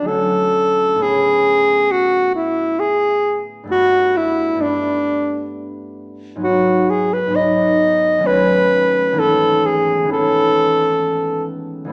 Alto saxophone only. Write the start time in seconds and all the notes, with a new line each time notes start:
0.07 A4
1.02 G#4
1.91 F#4
2.35 E4
2.79 G#4
3.71 F#4
4.17 E4
4.62 D4
6.44 F#4
6.90 G#4
7.13 B4
7.36 D#5
8.26 B4
9.19 A4
9.65 G#4
10.12 A4